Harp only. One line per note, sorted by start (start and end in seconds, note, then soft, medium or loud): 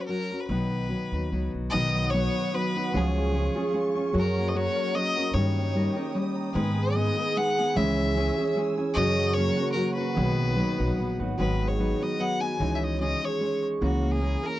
1.73 3.00 D#3 medium
1.94 3.00 F#3 medium
2.13 4.43 B3 medium
2.36 3.00 F#4 medium
2.76 3.00 F#5 medium
2.94 4.20 F3 medium
3.15 4.20 G#3 medium
3.34 4.54 C#4 medium
3.56 5.83 G#4 medium
3.97 5.47 G#5 medium
4.15 5.40 F#3 loud
4.37 5.56 A#3 medium
4.54 5.73 C#4 medium
4.75 6.87 A#4 medium
5.15 6.35 A#5 medium
5.35 6.53 D#3 medium
5.56 7.01 A#3 medium
5.74 8.16 C#4 medium
5.96 6.84 G4 medium
6.35 7.01 A#5 medium
6.54 7.81 D#3 medium
6.78 7.81 G#3 medium
6.95 9.43 B3 medium
7.18 8.39 G#4 medium
7.58 8.77 G#5 medium
7.75 9.01 E3 medium
7.99 9.01 G#3 medium
8.17 11.07 C#4 medium
8.39 10.66 G#4 medium
8.78 10.28 G#5 medium
8.96 10.21 C#3 medium
9.18 10.21 F#3 medium
9.37 10.62 A#3 medium
9.57 10.77 F#4 medium
9.97 11.19 F#5 medium
10.14 11.38 D#3 medium
10.37 11.44 F#3 medium
10.56 13.67 B3 medium
10.78 12.00 F#4 medium
11.20 12.81 F#5 medium
11.39 12.66 D#3 medium
11.62 12.66 G#3 medium
12.01 14.44 F#4 medium
12.41 13.91 G#5 medium
12.61 13.80 E3 medium
12.83 14.60 C#4 medium
13.22 14.60 G#4 medium
13.63 14.60 C#6 medium
13.81 14.60 E3 medium
14.03 14.60 A#3 medium
14.43 14.60 A#4 medium